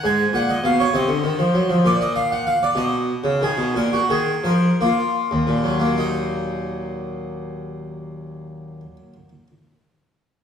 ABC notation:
X:1
M:6/8
L:1/16
Q:3/8=55
K:Ebm
V:1 name="Harpsichord"
a2 g e f d e6 | =d e f g f d ^d4 A2 | B G A2 B2 F6 | [E,,B,,G,B,E]12- |
[E,,B,,G,B,E]12 |]
V:2 name="Harpsichord" clef=bass
A,,2 B,,2 C,2 =C, =D, E, F, G, F, | B,,6 =B,,3 D, ^D, B,, | B,,2 E,2 F,2 B,6 | z12 |
z12 |]